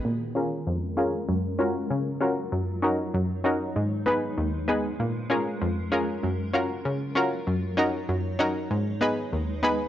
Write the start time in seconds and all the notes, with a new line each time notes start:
0.05 A#2 G#3 C#4 A#4
0.35 C#4 F4 G#4 A#4
0.67 F2
0.97 C#4 F4 G#4 A#4
1.29 F#2 F#3 F4
1.59 C#4 F4 F#4 A#4
1.90 C#3
2.21 C#4 F4 F#4 A#4
2.52 F#2 D#4 C#5
2.82 C#4 D#4 F#4 A#4
3.14 F#2
3.44 C#4 D#4 F#4 A#4
3.76 G#2 G#3 B4
4.06 B3 D#4 G#4 B4
4.38 D#2
4.68 B3 D#4 G#4 B4
5.00 A#2 C#4 A#4
5.30 C#4 F4 G#4 A#4
5.62 F2
5.92 C#4 F4 G#4 A#4
6.23 F#2 F#3 F4
6.53 C#4 F4 F#4 A#4
6.85 C#3
7.15 C#4 F4 F#4 A#4
7.47 F#2 D#4 C#5
7.77 C#4 D#4 F#4 A#4
8.09 F#2
8.39 C#4 D#4 F#4 A#4
8.71 G#2 G#3 B4
9.01 B3 D#4 G#4 B4
9.33 D#2
9.63 B3 D#4 G#4 B4